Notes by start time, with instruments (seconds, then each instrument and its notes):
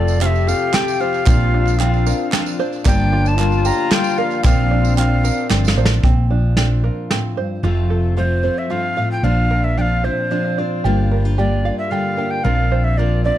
Already playing: fingered electric bass F1, felt piano F1 F2 F3 A3 C4 A4 C5, steel-string acoustic guitar F2 C3 F3 A3 C4 F4, five-string banjo C4 F4, trombone A4, recorder D5
0.08 clap, tambourine
0.20 steel-string acoustic guitar F3 A3 C4 F4, five-string banjo C4, trombone G4, recorder F5, clap, closed hi-hat
0.26 recorder E5
0.35 tambourine
0.47 steel-string acoustic guitar F3 A3 C4 F4, five-string banjo A4, recorder F5, tambourine
0.73 steel-string acoustic guitar F3 A3 C4 F4, five-string banjo C4, recorder G5, snare, clap, closed hi-hat
0.88 tambourine
1.00 steel-string acoustic guitar F3 A3 C4 F4, five-string banjo C5, recorder F5, tambourine
1.14 clap, tambourine
1.26 felt piano A#1 A#2 F3 C4 D4 A#4 C5, fingered electric bass A#1, steel-string acoustic guitar A#2 F3 C4 D4 F4, five-string banjo C4, trombone F4, kick, clap, closed hi-hat, tambourine
1.40 clap
1.54 five-string banjo D4
1.66 clap, tambourine
1.79 steel-string acoustic guitar F3 C4 D4 F4, five-string banjo C4, trombone F4, clap, closed hi-hat
1.94 tambourine
2.06 steel-string acoustic guitar C4 D4 F4, five-string banjo A#4, tambourine
2.32 steel-string acoustic guitar F3 C4 D4 F4, five-string banjo C4, snare, clap, closed hi-hat
2.46 tambourine
2.59 steel-string acoustic guitar C4 D4 F4, five-string banjo C5, tambourine
2.73 clap, tambourine
2.85 fingered electric bass G1, felt piano G1 G2 F3 A#3 D4 G4 D5, steel-string acoustic guitar G3 A#3 D4 F4, five-string banjo A#3, trombone D4, recorder G5, kick, clap, closed hi-hat, tambourine
3.00 clap
3.13 five-string banjo F4
3.26 recorder A5, clap, tambourine
3.38 steel-string acoustic guitar G3 A#3 D4 F4, five-string banjo A#3, trombone F4, clap, closed hi-hat
3.52 tambourine
3.65 steel-string acoustic guitar A#3 D4 F4, five-string banjo G4, recorder A#5, tambourine
3.91 steel-string acoustic guitar G3 A#3 D4 F4, five-string banjo A#3, recorder G5, snare, clap, closed hi-hat
4.04 tambourine
4.18 felt piano F3 A#3 D4 G4 D5, steel-string acoustic guitar A#3 D4 F4, five-string banjo A#4, recorder F5, tambourine
4.31 clap, tambourine
4.43 felt piano A#1 A#2 F3 C4 D4 A#4 D5, fingered electric bass A#1, steel-string acoustic guitar A#2 F3 C4 D4 F4, five-string banjo C4, trombone C4, recorder F5, kick, clap, closed hi-hat, tambourine
4.71 five-string banjo D4
4.85 tambourine
4.97 steel-string acoustic guitar F3 C4 D4 F4, five-string banjo C4, recorder F5, clap, closed hi-hat, tambourine
5.23 steel-string acoustic guitar C4 D4 F4, five-string banjo A#4, clap, tambourine
5.50 fingered electric bass G1, steel-string acoustic guitar F3 C4 D4 F4, five-string banjo C4, snare, clap, tambourine
5.65 snare, clap, tambourine
5.76 fingered electric bass A1, felt piano F3 C4 D4 A#4 D5, five-string banjo C5, tambourine
5.85 snare
5.91 tambourine
6.03 fingered electric bass A#1, steel-string acoustic guitar A#2, five-string banjo C4, kick, closed hi-hat
6.30 steel-string acoustic guitar F3, five-string banjo D4
6.57 five-string banjo C4, steel-string acoustic guitar D4, snare, closed hi-hat
6.84 steel-string acoustic guitar F4, five-string banjo A#4
7.11 steel-string acoustic guitar A2, five-string banjo C4, snare, closed hi-hat
7.37 steel-string acoustic guitar G2, five-string banjo C5
7.63 fingered electric bass F1, steel-string acoustic guitar F2 C3 F3 A3 C4 F4 A4, five-string banjo F4
7.90 steel-string acoustic guitar F4, five-string banjo A4
8.17 steel-string acoustic guitar F3 A3 C4 F4, five-string banjo F4, recorder C5
8.43 steel-string acoustic guitar F3 A3 C4 F4, five-string banjo C5
8.58 recorder E5
8.70 steel-string acoustic guitar G2 F3 A3 C4 F4, five-string banjo F4, recorder F5
8.96 steel-string acoustic guitar A2 F3 A3 C4 F4, five-string banjo F5
9.12 recorder G5
9.23 fingered electric bass A#1, steel-string acoustic guitar A#2 F3 C4 D4 F4 C5, five-string banjo D4, recorder F5
9.51 steel-string acoustic guitar F4, five-string banjo A#4
9.64 recorder E5
9.77 steel-string acoustic guitar F3 C4 D4 F4, five-string banjo D4, recorder F5 G5
10.04 steel-string acoustic guitar C4 D4 F4, five-string banjo C5, recorder C5
10.31 steel-string acoustic guitar F3 C4 D4 F4, five-string banjo D4
10.58 steel-string acoustic guitar C4 D4 F4 C5, five-string banjo D5
10.84 fingered electric bass G1, steel-string acoustic guitar G2 G3 A#3 D4 F4 A#4, five-string banjo G4
11.11 steel-string acoustic guitar D4, five-string banjo A#4
11.25 steel-string acoustic guitar F4
11.38 steel-string acoustic guitar G3 A#3 D4 F4, five-string banjo G4, recorder D5
11.65 steel-string acoustic guitar A#3 D4 F4, five-string banjo F5
11.78 recorder E5
11.91 steel-string acoustic guitar D3 G3 A#3 D4 F4, five-string banjo G4, recorder F5
12.17 steel-string acoustic guitar A#3 D4 F4 A#4, five-string banjo G5
12.31 recorder G5
12.44 fingered electric bass A#1, steel-string acoustic guitar A#2 F3 C4 D4 F4 C5, five-string banjo A#4, recorder F5
12.72 steel-string acoustic guitar F4, five-string banjo C5
12.84 recorder E5
12.98 steel-string acoustic guitar F3 C4 D4 F4, five-string banjo A#4, recorder D5
13.24 steel-string acoustic guitar C4 D4 F4, recorder D5, five-string banjo D5